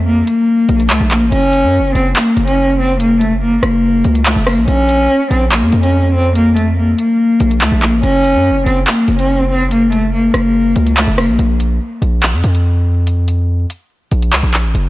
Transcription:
Already playing: F2
0.06 A#3
0.27 A#3, closed hi-hat
0.69 A#1, closed hi-hat
0.80 closed hi-hat
0.90 C#2 A3, clap
1.00 A#1
1.11 A#3, clap, closed hi-hat
1.21 A1
1.32 F#1 C#4, closed hi-hat
1.53 closed hi-hat
1.63 F#2
1.79 F#1
1.95 F#1 C4, closed hi-hat
2.16 A#3, clap, closed hi-hat
2.37 F#1, closed hi-hat
2.47 C#4, closed hi-hat
2.79 C4
3.00 A#3, closed hi-hat
3.21 A3, closed hi-hat
3.42 A#3
3.63 F#1 A#3, cross-stick, closed hi-hat
4.04 C#2, closed hi-hat
4.15 closed hi-hat
4.26 A3, clap, closed hi-hat
4.36 F#1
4.47 A#3, cross-stick, open hi-hat
4.57 A#1
4.67 A#1 C#4, closed hi-hat
4.89 closed hi-hat
5.31 A#1 C4, closed hi-hat
5.52 A#3, clap, closed hi-hat
5.62 F2
5.72 F2, closed hi-hat
5.83 C#4, closed hi-hat
6.14 C4
6.35 A#3, closed hi-hat
6.56 A3, closed hi-hat
6.77 A#3
6.98 A#3, closed hi-hat
7.40 A#1, closed hi-hat
7.51 closed hi-hat
7.61 C#2 A3, clap
7.72 A#1
7.82 A#3, clap, closed hi-hat
7.93 A1
8.03 F#1 C#4, closed hi-hat
8.24 closed hi-hat
8.35 F#2
8.50 F#1
8.66 F#1 C4, closed hi-hat
8.87 A#3, clap, closed hi-hat
9.08 F#1, closed hi-hat
9.19 C#4, closed hi-hat
9.50 C4
9.71 A#3, closed hi-hat
9.92 A3, closed hi-hat
10.13 A#3
10.34 F#1 A#3, cross-stick, closed hi-hat
10.76 C#2, closed hi-hat
10.87 closed hi-hat
10.97 A3, clap, closed hi-hat
11.07 F#1
11.18 A#3, cross-stick, open hi-hat
11.28 A#1
11.39 A#1, closed hi-hat
11.60 closed hi-hat
12.02 A#1, closed hi-hat
12.23 clap, closed hi-hat
12.33 F2
12.44 F2, closed hi-hat
12.55 closed hi-hat
13.07 closed hi-hat
13.28 closed hi-hat
13.70 closed hi-hat
14.11 A#1, closed hi-hat
14.22 closed hi-hat
14.33 C#2, clap
14.43 A#1
14.54 clap, closed hi-hat
14.64 A1
14.75 F#1, closed hi-hat

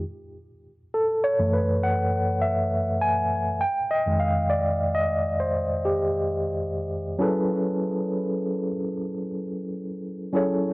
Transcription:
0.94 A4
1.24 C#5
1.39 F#2 E3 A3
1.53 B4
1.83 F#5
2.42 E5
3.02 G#5
3.61 G5
3.91 D#5
4.06 F2 D#3 G#3
4.20 F5
4.50 D5
4.95 D#5
5.40 C5
5.85 G4
7.19 F#3 C#4 E4 G#4 A4 B4
10.33 F#3 C#4 E4 G#4 A4 C#5

